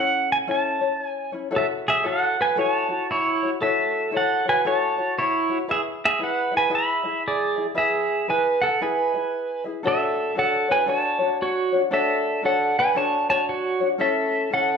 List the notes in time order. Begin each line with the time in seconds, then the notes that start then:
Already playing: C#4 E4 A4 C#5
0.00 F#5
0.32 G#5
0.47 C#4 E4 A4 C#5 A5
0.81 C#4 E4 C#5
1.06 G#5
1.32 C#4 E4 C#5
1.51 E4 F#4 A4 C#5
1.56 A4 E5
1.88 G#4 E5
2.02 E4 F#4 A4 C#5
2.08 F#5
2.41 B4 G#5
2.56 E4 F#4 A4 C#5
2.61 A5
2.89 E4 F#4 C#5
3.11 E4 C#5
3.43 E4 F#4 C#5
3.61 E4 F#4 A4 C#5 E5
4.11 E4 F#4 A4 C#5
4.17 A4 F#5
4.46 E4 F#4 B4 C#5 G#5
4.65 E4 F#4 A4 C#5 A5
4.98 E4 F#4 C#5
5.19 E4 C#5
5.49 E4 F#4 C#5
5.68 E4 G#4 B4 E5
5.72 G#4
6.05 G#4 E5
6.19 E4 G#4 B4 E5
6.23 B4 F#5
6.52 E4 G#4 E5
6.57 B4 G#5
6.70 E4 G#4 B4 E5
6.75 E5 B5
7.04 E4 G#4 E5
7.28 G#4 D5
7.56 E4 G#4 E5
7.75 E4 G#4 B4 E5
7.79 G#4
8.28 E4 G#4 B4 E5 G#5
8.62 A4 F#5
8.81 E4 G#4 B4 E5 G#5
9.14 E4 G#4 E5
9.64 E4 G#4 E5
9.83 D4 F#4 A4 C#5
9.87 A4 E5
10.35 D4 F#4 A4 C#5 F#5
10.39 A4
10.68 D4 F#4 B4 C#5 G#5
10.86 D4 F#4 A4 C#5 A5
11.19 D4 F#4 C#5
11.42 F#4 C#5
11.72 D4 F#4 C#5
11.91 D4 F#4 A4 C#5 E5
12.43 D4 F#4 A4 C#5 F#5
12.79 B4 G#5
12.95 D4 F#4 A4 C#5 A5
13.29 D4 F#4 C#5 A5
13.49 F#4 C#5
13.80 D4 F#4 C#5
13.98 C#4 E4 A4 C#5 E5
14.51 C#4 E4 A4 C#5 F#5